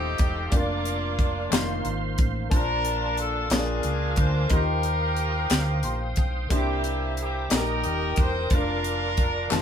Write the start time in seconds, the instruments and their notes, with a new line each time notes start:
Already playing: fingered electric bass D#1, grand piano A3 C4 D#4 F4 C5, horn section C4 D#4 G4, tonewheel organ A4 D#5 F5 C6
0.18 fingered electric bass E1, kick, closed hi-hat
0.50 fingered electric bass F1, tonewheel organ A#3 D5 D6, grand piano D4 F4 A#4, kick, closed hi-hat
0.55 horn section A#3 D4 F4
0.85 closed hi-hat
1.19 kick, closed hi-hat
1.50 fingered electric bass F1, grand piano D#3 A#3 C4 F4 C5, tonewheel organ C5 C6, snare, clap, closed hi-hat
1.85 fingered electric bass G#1, closed hi-hat
2.18 fingered electric bass A1, kick, closed hi-hat
2.49 fingered electric bass A#1, grand piano A#2 A#3 D4 F4 C5 A5, tonewheel organ D5 A5, kick, closed hi-hat
2.54 horn section D4 F4 A#4
2.85 closed hi-hat
3.17 horn section A4, closed hi-hat
3.50 fingered electric bass A#1, grand piano A#2 A#3 D4 F4 G#4 C#5, horn section D4 F4 G#4, tonewheel organ A#4 F5 G#5 D6, snare, clap, closed hi-hat
3.59 grand piano D5
3.83 fingered electric bass C#2, closed hi-hat
4.16 fingered electric bass D2, horn section C5, kick, closed hi-hat
4.48 fingered electric bass D#2, grand piano D#3 A#3 D#4 F4 G4, horn section G4 A#4, tonewheel organ C5 F5 G5 D#6, kick, closed hi-hat
4.53 horn section F4, grand piano C5
4.83 closed hi-hat
5.17 closed hi-hat
5.50 fingered electric bass D2, snare, clap, closed hi-hat
5.83 fingered electric bass A#1, grand piano C6, closed hi-hat
6.16 fingered electric bass B1, grand piano G5, kick, closed hi-hat
6.49 fingered electric bass C2, grand piano C3 A#3 D4 E4 G4 C5, horn section A#3 E4, tonewheel organ C5 E5 A#5 D6, kick, closed hi-hat
6.54 horn section G4
6.84 closed hi-hat
7.17 closed hi-hat
7.22 horn section G4
7.49 fingered electric bass A#1, grand piano A#2 D#4 G4 A4, tonewheel organ A#4 D#5 G5 D#6, snare, clap, closed hi-hat
7.54 horn section D#4 G4 A#4
7.58 grand piano A#4
7.84 fingered electric bass D#1, closed hi-hat
8.16 fingered electric bass E1, kick, closed hi-hat
8.21 horn section C5
8.50 fingered electric bass F1, grand piano D4 F4 A#4, horn section D4 F4 A#4, tonewheel organ D5 F5 D6, kick, closed hi-hat
8.84 closed hi-hat
9.17 kick, closed hi-hat
9.50 fingered electric bass F1, grand piano D#3 G3 C4 F4 A5, tonewheel organ G4 F5 A5 D#6, snare, clap